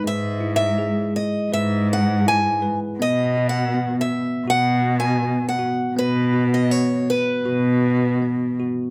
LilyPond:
<<
  \new Staff \with { instrumentName = "Steel-string acoustic guitar" } { \time 4/4 \key b \major \tempo 4 = 81 \tuplet 3/2 { e''4 e''8~ } e''8 dis''8 e''8 fis''8 gis''8. r16 | \tuplet 3/2 { dis''4 fis''8~ fis''8 e''4 fis''4 gis''8~ gis''8 fis''4 } | b'8. dis''16 cis''8 b'4. r4 | }
  \new Staff \with { instrumentName = "Tine electric piano" } { \time 4/4 \key b \major gis8 e'8 gis'4 b'4 e'8 b'8 | b8 fis'8 b4 fis'4 b8 fis'8 | b8 fis'8 b4 fis'4 b8 fis'8 | }
  \new Staff \with { instrumentName = "Cello" } { \clef bass \time 4/4 \key b \major gis,2 gis,2 | b,2 b,2 | b,2 b,2 | }
>>